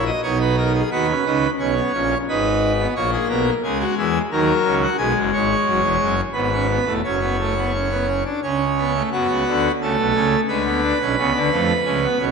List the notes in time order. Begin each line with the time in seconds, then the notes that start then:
Already playing: A#1 A#2 E4
0.06 D#5
0.23 B1 B2 D#4 C#5
0.41 B4
0.57 A#4
0.75 G#4
0.91 D#2 D#3 F#4 B4
1.10 C#4
1.25 C#2 C#3 D#4
1.59 B1 B2 C#4 C#5
1.77 B3
1.93 A#1 A#2 C#4
2.29 G#1 G#2 D#4 B4
2.79 B3
2.95 A#1 A#2 A#3 C#5
3.13 G#4
3.28 B1 B2 A#4
3.63 C#2 C#3 G#3 G#4
3.80 F#4
3.97 E2 E3 G#4
4.31 D#2 D#3 F#3 A#4
4.65 C#2 C#3
4.82 F#4
4.97 B1 B2 G#3 G#4
5.17 F#1 F#2
5.33 G#1 G#2 C#5
5.66 F#1 F#2
5.81 E1 E2
6.00 F#1 F#2
6.33 G#1 G#2 B3 B4
6.52 C#4
6.70 B3
6.85 E1 E2 A3
7.04 F#1 F#2 C#4 C#5
7.21 B3
7.39 A3
7.57 B3
7.73 C#4
7.91 B3
8.07 C#4
8.25 D4
8.43 C#2 C#3 C#4 C#5
8.77 B3
8.94 A3
9.11 F#2 F#3 B3 F#4
9.29 C#2 C#3
9.47 D2 D3
9.81 C#2 C#3 A3 A4
9.98 B1 B2
10.14 C#2 C#3
10.48 D2 D3 G#3 B4
10.65 B3
10.83 D4
11.01 B1 B2 C#4
11.17 C#2 C#3 B3
11.35 D2 D3
11.51 F2 F3 A3
11.85 C#2 C#3 G#3
12.03 B3
12.19 B1 B2 C#4